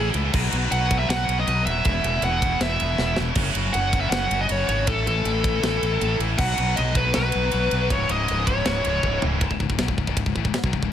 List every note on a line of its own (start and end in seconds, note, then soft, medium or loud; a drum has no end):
0.00 0.13 A1 loud
0.00 0.09 A2 medium
0.00 0.10 E3 medium
0.00 0.10 E4 medium
0.00 0.10 A4 medium
0.10 0.17 A2 medium
0.10 0.18 E3 medium
0.10 0.18 E4 medium
0.10 0.18 A4 medium
0.14 0.32 C#2 medium
0.14 0.25 A2 medium
0.14 ride medium
0.18 0.25 E3 medium
0.18 0.26 E4 medium
0.18 0.26 A4 medium
0.25 0.34 A2 medium
0.25 0.33 E3 medium
0.25 0.33 E4 medium
0.25 0.33 A4 medium
0.33 0.52 B1 loud
0.33 0.42 B2 medium
0.33 0.43 F#3 loud
0.33 0.41 F#4 medium
0.33 0.41 B4 loud
0.33 kick loud
0.33 crash loud
0.41 0.49 B2 medium
0.41 0.50 F#3 medium
0.41 0.48 F#4 medium
0.41 0.48 B4 medium
0.48 0.56 B2 medium
0.48 0.58 F#3 medium
0.48 0.56 F#4 medium
0.48 0.56 B4 medium
0.52 0.70 B1 loud
0.52 0.64 B2 medium
0.52 ride medium
0.57 0.66 F#3 medium
0.57 0.63 F#4 medium
0.57 0.63 B4 medium
0.63 0.72 B2 medium
0.63 0.74 F#3 medium
0.63 0.71 F#4 medium
0.63 0.71 B4 medium
0.71 1.07 B1 medium
0.71 0.79 B2 medium
0.71 0.79 F#3 medium
0.71 0.78 F#4 medium
0.71 0.79 B4 medium
0.71 0.98 F#5 loud
0.71 ride loud
0.78 0.87 B2 medium
0.78 0.87 F#3 medium
0.78 0.86 F#4 medium
0.78 0.86 B4 loud
0.87 0.94 B2 medium
0.87 0.96 F#3 medium
0.87 0.92 F#4 medium
0.87 0.93 B4 medium
0.87 kick loud
0.87 ride medium
0.93 1.02 B2 medium
0.93 1.03 F#3 medium
0.93 1.00 F#4 medium
0.93 1.01 B4 medium
0.99 1.08 B2 medium
0.99 1.09 F#4 medium
0.99 1.09 B4 medium
0.99 1.08 E5 medium
1.03 1.10 F#3 medium
1.09 1.27 B1 loud
1.09 1.16 B2 medium
1.09 1.18 F#3 medium
1.09 1.16 F#4 medium
1.09 1.17 B4 loud
1.09 1.36 F#5 loud
1.09 snare loud
1.09 ride loud
1.16 1.23 B2 medium
1.16 1.26 F#3 medium
1.16 1.24 F#4 medium
1.16 1.23 B4 medium
1.24 1.31 B2 medium
1.24 1.33 F#3 medium
1.24 1.32 F#4 medium
1.24 1.31 B4 medium
1.28 1.46 B1 medium
1.28 ride medium
1.32 1.40 B2 medium
1.32 1.41 F#3 medium
1.32 1.39 F#4 medium
1.32 1.40 B4 medium
1.40 1.48 B2 medium
1.40 1.48 F#3 medium
1.40 1.47 F#4 medium
1.40 1.47 B4 medium
1.40 1.65 D#5 loud
1.47 1.65 B1 loud
1.47 1.54 B2 medium
1.47 1.55 F#3 medium
1.47 1.54 F#4 medium
1.47 1.55 B4 medium
1.47 ride loud
1.54 1.62 B2 medium
1.54 1.63 F#3 medium
1.54 1.62 F#4 medium
1.54 1.62 B4 medium
1.62 1.83 D#1 loud
1.62 1.69 B2 medium
1.62 1.70 F#3 medium
1.62 1.69 F#4 medium
1.62 1.70 B4 medium
1.66 1.76 F#4 medium
1.66 1.77 B4 medium
1.66 2.24 E5 loud
1.66 ride medium
1.70 1.77 B2 medium
1.70 1.78 F#3 medium
1.76 1.85 B2 medium
1.76 1.86 F#3 medium
1.76 1.84 F#4 medium
1.76 1.85 B4 medium
1.85 2.03 E1 loud
1.85 1.91 E2 loud
1.85 1.93 B2 loud
1.85 1.93 B3 loud
1.85 1.93 E4 loud
1.85 kick loud
1.85 ride loud
1.92 1.99 E2 medium
1.92 2.01 B2 medium
1.92 2.00 B3 medium
1.92 2.00 E4 medium
2.00 2.21 E1 loud
2.00 2.07 E2 medium
2.00 2.08 B2 medium
2.00 2.08 B3 medium
2.00 2.08 E4 medium
2.00 ride medium
2.07 2.15 E2 medium
2.07 2.16 B2 medium
2.07 2.15 B3 medium
2.07 2.15 E4 medium
2.16 2.23 E2 medium
2.16 2.23 B2 medium
2.16 2.22 B3 medium
2.16 2.23 E4 medium
2.22 2.58 E1 loud
2.22 2.30 E2 medium
2.22 2.30 B2 medium
2.22 2.30 B3 medium
2.22 2.31 E4 medium
2.22 2.59 F#5 loud
2.22 ride loud
2.30 2.38 E2 medium
2.30 2.38 B2 medium
2.30 2.38 B3 medium
2.30 2.39 E4 medium
2.38 2.45 E2 medium
2.38 2.46 B2 medium
2.38 2.45 B3 medium
2.38 2.45 E4 medium
2.38 kick loud
2.43 2.53 E2 medium
2.43 2.52 B3 medium
2.43 2.53 E4 medium
2.43 ride medium
2.47 2.53 B2 medium
2.53 2.60 E2 medium
2.53 2.60 B2 medium
2.53 2.60 B3 medium
2.53 2.60 E4 medium
2.60 2.78 E1 medium
2.60 2.68 E2 medium
2.60 2.68 B2 medium
2.60 2.69 B3 medium
2.60 2.68 E4 medium
2.60 3.15 E5 medium
2.60 snare loud
2.60 ride loud
2.68 2.75 E2 medium
2.68 2.75 B2 medium
2.68 2.76 B3 medium
2.68 2.76 E4 medium
2.76 2.83 E2 medium
2.76 2.83 B2 medium
2.76 2.84 B3 medium
2.76 2.84 E4 medium
2.80 2.98 E1 medium
2.80 2.91 E2 medium
2.80 ride medium
2.84 2.93 B2 medium
2.84 2.91 B3 medium
2.84 2.91 E4 medium
2.91 2.99 E2 medium
2.91 2.99 B2 medium
2.91 2.98 B3 medium
2.91 2.99 E4 medium
2.98 3.16 E1 loud
2.98 3.06 E2 medium
2.98 3.06 B2 medium
2.98 3.06 B3 medium
2.98 3.07 E4 medium
2.98 snare medium
3.06 3.13 E2 medium
3.06 3.14 B2 medium
3.06 3.13 B3 medium
3.06 3.14 E4 medium
3.13 3.21 E2 medium
3.13 3.21 B2 medium
3.13 3.20 B3 medium
3.13 3.21 E4 medium
3.13 snare loud
3.18 3.35 E1 medium
3.18 3.29 E2 medium
3.18 3.28 B2 medium
3.18 3.28 B3 medium
3.18 3.29 E4 medium
3.29 3.35 E2 medium
3.29 3.35 B2 medium
3.29 3.35 B3 medium
3.29 3.36 E4 medium
3.35 3.54 F#1 loud
3.35 3.43 F#2 medium
3.35 3.42 C#3 medium
3.35 3.43 C#4 medium
3.35 3.43 F#4 loud
3.35 kick loud
3.35 crash loud
3.42 3.51 F#2 medium
3.42 3.50 C#3 medium
3.42 3.50 C#4 medium
3.42 3.51 F#4 medium
3.50 3.57 F#2 medium
3.50 3.57 C#3 medium
3.50 3.57 C#4 medium
3.50 3.58 F#4 medium
3.55 3.73 F#1 loud
3.55 3.65 F#2 medium
3.55 3.65 C#3 medium
3.55 3.65 C#4 medium
3.55 3.66 F#4 medium
3.55 ride medium
3.65 3.73 F#2 medium
3.65 3.72 C#3 medium
3.65 3.72 C#4 medium
3.65 3.74 F#4 medium
3.73 4.10 F#1 loud
3.73 3.80 F#2 medium
3.73 3.79 C#3 medium
3.73 3.80 C#4 medium
3.73 3.81 F#4 medium
3.73 4.00 F#5 loud
3.73 ride loud
3.80 3.88 F#2 medium
3.80 3.87 C#3 medium
3.80 3.87 C#4 medium
3.80 3.89 F#4 medium
3.88 3.96 F#2 medium
3.88 3.96 C#3 medium
3.88 3.95 C#4 medium
3.88 3.96 F#4 medium
3.93 4.03 F#2 medium
3.93 4.03 C#3 medium
3.93 4.03 C#4 medium
3.93 4.04 F#4 medium
3.93 kick loud
3.93 ride medium
4.01 4.11 F#2 medium
4.01 4.11 C#3 medium
4.01 4.10 C#4 medium
4.01 4.12 F#4 medium
4.01 4.10 E5 loud
4.10 4.29 F#1 loud
4.10 4.18 F#2 medium
4.10 4.18 C#3 medium
4.10 4.18 C#4 medium
4.10 4.19 F#4 medium
4.10 4.40 F#5 loud
4.10 snare loud
4.10 ride loud
4.18 4.26 F#2 medium
4.18 4.26 C#3 medium
4.18 4.26 C#4 medium
4.18 4.27 F#4 medium
4.27 4.34 F#2 medium
4.27 4.33 C#3 medium
4.27 4.34 C#4 medium
4.27 4.34 F#4 medium
4.31 4.48 F#1 medium
4.31 4.40 F#2 medium
4.31 4.41 C#3 medium
4.31 4.41 C#4 medium
4.31 ride medium
4.35 4.42 F#4 medium
4.40 4.48 F#2 medium
4.40 4.48 C#3 medium
4.40 4.49 C#4 medium
4.40 4.49 F#4 medium
4.40 4.52 D#5 medium
4.49 4.68 F#1 loud
4.49 4.56 F#2 medium
4.49 4.56 C#3 medium
4.49 4.56 C#4 medium
4.49 4.57 F#4 medium
4.49 4.67 C#5 loud
4.49 ride loud
4.56 4.64 F#2 medium
4.56 4.65 C#3 medium
4.56 4.64 C#4 medium
4.56 4.65 F#4 medium
4.64 4.88 G#1 medium
4.64 4.72 F#2 medium
4.64 4.72 C#3 medium
4.64 4.71 C#4 medium
4.64 4.72 F#4 medium
4.64 4.88 C#5 loud
4.69 4.80 F#2 medium
4.69 4.79 C#4 medium
4.69 4.79 F#4 medium
4.69 ride medium
4.73 4.79 C#3 medium
4.79 4.86 F#2 medium
4.79 4.87 C#3 medium
4.79 4.87 C#4 medium
4.79 4.87 F#4 medium
4.86 5.05 A1 loud
4.86 4.93 A2 medium
4.86 4.94 E3 loud
4.86 4.95 E4 medium
4.86 5.06 A4 loud
4.86 4.94 A4 loud
4.86 kick loud
4.86 ride loud
4.93 5.00 A2 medium
4.93 5.02 E3 medium
4.93 5.03 E4 medium
4.93 5.02 A4 medium
5.01 5.08 A2 medium
5.01 5.09 E3 medium
5.01 5.10 E4 medium
5.01 5.11 A4 medium
5.07 5.24 A1 medium
5.07 5.15 A2 medium
5.07 5.17 E3 medium
5.07 5.17 E4 medium
5.07 6.16 A4 loud
5.07 ride medium
5.11 5.18 A4 medium
5.16 5.23 A2 medium
5.16 5.24 E3 medium
5.16 5.25 E4 medium
5.16 5.26 A4 medium
5.25 5.61 A1 medium
5.25 5.31 A2 medium
5.25 5.32 E3 medium
5.25 5.33 E4 medium
5.25 5.32 A4 medium
5.25 ride loud
5.32 5.39 A2 medium
5.32 5.41 E3 medium
5.32 5.40 E4 medium
5.32 5.40 A4 loud
5.40 5.47 A2 medium
5.40 5.48 E3 medium
5.40 5.48 E4 medium
5.40 5.48 A4 medium
5.44 5.54 A2 medium
5.44 kick loud
5.44 ride medium
5.48 5.55 E3 medium
5.48 5.56 E4 medium
5.48 5.56 A4 loud
5.54 5.62 A2 medium
5.54 5.62 E3 medium
5.54 5.64 E4 medium
5.54 5.63 A4 medium
5.63 5.81 A1 medium
5.63 5.69 A2 medium
5.63 5.70 E3 medium
5.63 5.70 E4 medium
5.63 5.71 A4 loud
5.63 snare loud
5.63 ride loud
5.70 5.77 A2 medium
5.70 5.77 E3 medium
5.70 5.78 E4 medium
5.70 5.79 A4 medium
5.77 5.84 A2 medium
5.77 5.85 E3 medium
5.77 5.85 E4 medium
5.77 5.86 A4 medium
5.83 6.00 A1 medium
5.83 5.92 A2 medium
5.83 5.93 E3 medium
5.83 5.93 E4 medium
5.83 ride medium
5.87 5.94 A4 medium
5.92 6.00 A2 medium
5.92 6.01 E3 medium
5.92 6.00 E4 medium
5.92 6.01 A4 medium
6.00 6.19 A1 loud
6.00 6.08 A2 medium
6.00 6.08 E3 medium
6.00 6.08 E4 medium
6.00 6.08 A4 medium
6.00 ride loud
6.08 6.15 A2 medium
6.08 6.15 E3 medium
6.08 6.15 E4 medium
6.08 6.16 A4 medium
6.15 6.22 A2 medium
6.15 6.23 E3 medium
6.15 6.23 E4 medium
6.15 6.23 A4 medium
6.19 6.37 A1 medium
6.19 6.30 A2 medium
6.19 ride medium
6.24 6.31 E3 medium
6.24 6.31 E4 medium
6.24 6.31 A4 medium
6.31 6.38 A2 medium
6.31 6.39 E3 medium
6.31 6.37 E4 medium
6.31 6.37 A4 medium
6.38 6.57 B1 loud
6.38 6.46 B2 medium
6.38 6.46 F#3 medium
6.38 6.45 F#4 medium
6.38 6.45 B4 loud
6.38 6.77 F#5 loud
6.38 kick loud
6.38 crash loud
6.45 6.54 B2 medium
6.45 6.54 F#3 medium
6.45 6.52 F#4 medium
6.45 6.52 B4 medium
6.52 6.61 B2 medium
6.52 6.62 F#3 medium
6.52 6.60 F#4 medium
6.52 6.60 B4 medium
6.58 6.76 B1 loud
6.58 6.66 F#4 medium
6.58 6.67 B4 medium
6.58 ride medium
6.62 6.69 B2 medium
6.62 6.68 F#3 medium
6.67 6.77 B2 medium
6.67 6.76 F#3 medium
6.67 6.74 F#4 medium
6.67 6.75 B4 medium
6.75 7.13 B1 loud
6.75 6.84 B2 medium
6.75 6.84 F#3 medium
6.75 6.82 F#4 medium
6.75 6.83 B4 medium
6.75 6.96 D#5 loud
6.75 ride loud
6.82 6.91 B2 medium
6.82 6.92 F#3 medium
6.82 6.90 F#4 medium
6.82 6.91 B4 medium
6.91 6.99 B2 medium
6.91 6.99 F#3 medium
6.91 6.97 F#4 medium
6.91 6.98 B4 medium
6.91 kick medium
6.91 ride medium
6.96 7.06 B2 medium
6.96 7.06 F#3 medium
6.96 7.05 F#4 medium
6.96 7.14 B4 medium
6.96 7.05 B4 medium
7.06 7.14 B2 medium
7.06 7.13 F#3 medium
7.06 7.13 F#4 medium
7.06 7.13 B4 medium
7.13 7.33 B1 loud
7.13 7.22 B2 medium
7.13 7.21 F#3 medium
7.13 7.21 F#4 medium
7.13 7.21 B4 loud
7.13 7.92 B4 loud
7.13 snare loud
7.13 ride loud
7.21 7.29 B2 medium
7.21 7.28 F#3 medium
7.21 7.28 F#4 medium
7.21 7.29 B4 medium
7.28 7.37 B2 medium
7.28 7.36 F#3 medium
7.28 7.35 F#4 medium
7.28 7.36 B4 medium
7.32 7.52 B1 medium
7.32 7.43 F#4 medium
7.32 ride medium
7.37 7.44 B2 medium
7.37 7.45 F#3 medium
7.37 7.43 B4 medium
7.44 7.52 B2 medium
7.44 7.52 F#3 medium
7.44 7.50 F#4 medium
7.44 7.51 B4 medium
7.50 7.71 B1 loud
7.50 7.59 B2 medium
7.50 7.59 F#3 medium
7.50 7.58 F#4 medium
7.50 7.59 B4 medium
7.50 ride loud
7.59 7.67 B2 medium
7.59 7.66 F#3 medium
7.59 7.66 F#4 medium
7.59 7.66 B4 medium
7.66 7.74 B2 medium
7.66 7.74 F#3 medium
7.66 7.73 F#4 medium
7.66 7.73 B4 medium
7.71 7.89 B1 loud
7.71 7.82 B2 medium
7.71 7.82 F#3 medium
7.71 7.81 F#4 medium
7.71 7.81 B4 medium
7.71 ride medium
7.82 7.90 B2 medium
7.82 7.90 F#3 medium
7.82 7.89 F#4 medium
7.82 7.89 B4 medium
7.90 8.08 C#1 loud
7.90 7.98 C#2 medium
7.90 7.99 G#2 medium
7.90 7.98 G#3 medium
7.90 7.98 E4 medium
7.90 8.11 C#5 loud
7.90 kick loud
7.90 ride loud
7.98 8.05 C#2 medium
7.98 8.06 G#2 medium
7.98 8.06 G#3 medium
7.98 8.06 E4 medium
8.06 8.27 C#1 loud
8.06 8.14 C#2 medium
8.06 8.14 G#2 medium
8.06 8.14 G#3 medium
8.06 8.14 E4 medium
8.06 ride medium
8.11 8.22 C#2 medium
8.11 8.22 G#2 medium
8.11 8.20 G#3 medium
8.11 8.21 E4 medium
8.11 8.47 D#5 loud
8.20 8.30 C#2 medium
8.20 8.30 G#2 medium
8.20 8.28 G#3 medium
8.20 8.28 E4 medium
8.28 8.64 C#1 medium
8.28 8.38 C#2 medium
8.28 8.38 G#2 medium
8.28 8.36 G#3 medium
8.28 8.36 E4 medium
8.28 ride loud
8.36 8.45 C#2 medium
8.36 8.46 G#2 medium
8.36 8.43 G#3 medium
8.36 8.43 E4 medium
8.43 8.53 C#2 medium
8.43 8.53 G#2 medium
8.43 8.50 G#3 medium
8.43 8.51 E4 medium
8.47 8.58 G#3 medium
8.47 9.18 C#5 medium
8.47 kick medium
8.47 ride medium
8.52 8.60 C#2 medium
8.52 8.62 G#2 medium
8.52 8.59 E4 medium
8.59 8.69 C#2 medium
8.59 8.70 G#2 medium
8.59 8.66 G#3 medium
8.59 8.66 E4 medium
8.66 8.83 C#1 loud
8.66 8.77 C#2 medium
8.66 8.73 G#3 medium
8.66 8.73 E4 medium
8.66 snare loud
8.66 ride loud
8.70 8.77 G#2 medium
8.70 8.81 G#3 medium
8.70 8.80 E4 medium
8.77 8.84 C#2 medium
8.77 8.85 G#2 medium
8.77 8.88 E4 medium
8.81 9.02 C#1 medium
8.81 8.92 C#2 medium
8.81 8.93 G#2 medium
8.81 8.88 G#3 medium
8.81 ride medium
8.89 9.00 C#2 medium
8.89 8.96 G#3 medium
8.89 8.96 E4 medium
8.93 9.01 G#2 medium
8.93 9.04 G#3 medium
8.93 9.04 E4 medium
9.01 9.21 C#1 loud
9.01 9.07 C#2 medium
9.01 9.09 G#2 medium
9.01 9.12 E4 medium
9.01 kick medium
9.05 9.15 C#2 medium
9.05 9.10 G#3 medium
9.09 9.16 G#2 medium
9.09 9.18 G#3 medium
9.09 9.18 E4 medium
9.16 9.24 C#2 medium
9.16 9.24 G#2 medium
9.16 9.26 G#3 medium
9.16 9.26 E4 medium
9.22 9.40 C#1 medium
9.22 9.31 C#2 medium
9.22 9.32 G#2 medium
9.22 floor tom loud
9.26 9.33 G#3 medium
9.26 9.33 E4 medium
9.32 9.40 C#2 medium
9.32 9.41 G#2 medium
9.32 9.41 G#3 medium
9.32 9.41 E4 medium
9.41 9.50 C#1 loud
9.41 9.50 C#2 medium
9.41 9.50 G#2 loud
9.41 kick loud
9.41 ride bell medium
9.51 9.59 C#1 medium
9.51 9.60 C#2 medium
9.51 9.60 G#2 medium
9.51 kick medium
9.60 9.69 C#1 medium
9.60 9.70 C#2 medium
9.60 9.70 G#2 medium
9.60 kick medium
9.70 9.78 C#1 medium
9.70 9.80 C#2 medium
9.70 9.80 G#2 medium
9.70 kick medium
9.79 9.88 B1 loud
9.79 9.89 B2 medium
9.79 9.89 F#3 loud
9.79 snare loud
9.79 ride bell medium
9.88 9.97 C#1 medium
9.88 9.98 C#2 medium
9.88 9.98 G#2 medium
9.88 kick medium
9.98 10.07 C#1 medium
9.98 10.06 C#2 medium
9.98 10.08 G#2 medium
9.98 kick medium
10.07 10.16 C#1 loud
10.07 10.16 C#2 medium
10.07 10.17 G#2 loud
10.07 kick medium
10.17 10.26 C#1 medium
10.17 10.25 C#2 medium
10.17 10.25 G#2 medium
10.17 kick medium
10.17 ride bell medium
10.26 10.35 C#1 medium
10.26 10.35 C#2 medium
10.26 10.35 G#2 medium
10.26 kick medium
10.36 10.44 A1 medium
10.36 10.45 A2 medium
10.36 10.45 E3 medium
10.36 kick medium
10.45 10.54 C#1 medium
10.45 10.54 C#2 medium
10.45 10.55 G#2 medium
10.45 kick medium
10.54 muted distorted electric guitar stroke medium
10.54 muted fingered electric bass stroke soft
10.54 snare loud
10.54 ride bell medium
10.63 10.72 B1 loud
10.63 10.73 B2 medium
10.63 10.74 F#3 loud
10.63 kick loud
10.73 10.82 C#1 medium
10.73 10.83 C#2 medium
10.73 10.84 G#2 medium
10.73 kick medium
10.83 10.91 C#1 medium
10.83 10.91 C#2 medium
10.83 10.92 G#2 medium
10.83 kick medium